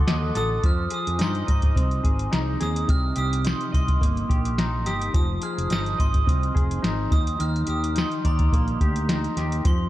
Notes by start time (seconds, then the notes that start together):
Already playing: D3 F#4 A4 C6
0.07 D#2 D#5, snare, closed hi-hat
0.35 A1 A4 D#6, snare, closed hi-hat
0.64 F2 F3 F6, kick, closed hi-hat
0.90 G#4 D#6, closed hi-hat
1.07 F2, closed hi-hat
1.19 G2 D#4 C6, snare, closed hi-hat
1.35 closed hi-hat
1.47 G#2 D#5 C6, kick, closed hi-hat
1.62 kick, closed hi-hat
1.76 C2 C4, kick, closed hi-hat
1.91 closed hi-hat
2.04 G#1 G#4, kick, closed hi-hat
2.19 closed hi-hat
2.31 C2 D#4, snare, closed hi-hat
2.60 D#2 G#4 D#6, snare, closed hi-hat
2.76 closed hi-hat
2.88 C2 C3 F6, kick, closed hi-hat
3.16 C2 G4 D#6, closed hi-hat
3.33 closed hi-hat
3.45 D#4 C6, snare, closed hi-hat
3.61 closed hi-hat
3.72 C2 D#5 C6, kick, closed hi-hat
3.88 kick, closed hi-hat
4.01 G1 A#3, kick, closed hi-hat
4.17 closed hi-hat
4.29 A#1 G4, kick, closed hi-hat
4.45 closed hi-hat
4.58 D#4, snare, closed hi-hat
4.86 G1 G4 D#6, snare, closed hi-hat
5.02 closed hi-hat
5.14 F1 F3 D#6, kick, closed hi-hat
5.42 G#4 F6, closed hi-hat
5.58 F1, closed hi-hat
5.70 G1 D#4 D#6, snare, closed hi-hat
5.86 closed hi-hat
5.98 G#1 D#5 C6, kick, closed hi-hat
6.14 kick, closed hi-hat
6.27 C2 C4, kick, closed hi-hat
6.43 closed hi-hat
6.55 F1 G#4, kick, closed hi-hat
6.71 closed hi-hat
6.82 G#1 D#4, snare, closed hi-hat
7.11 D#2 D#3 D#6, kick, snare, closed hi-hat
7.27 closed hi-hat
7.39 D#2 D#3 F6, closed hi-hat
7.56 closed hi-hat
7.67 D#2 G4 D#6, closed hi-hat
7.84 closed hi-hat
7.95 D#4 C6, snare, closed hi-hat
8.12 closed hi-hat
8.25 D#2 D5 A#5, kick, closed hi-hat
8.39 kick, closed hi-hat
8.52 A#1 A#3, kick, closed hi-hat
8.68 closed hi-hat
8.81 D2 G4, kick, closed hi-hat
8.96 closed hi-hat
9.09 D#4, snare, closed hi-hat
9.24 closed hi-hat
9.37 D#2 G4, snare, closed hi-hat
9.52 closed hi-hat
9.65 F2 F3 C6, kick, closed hi-hat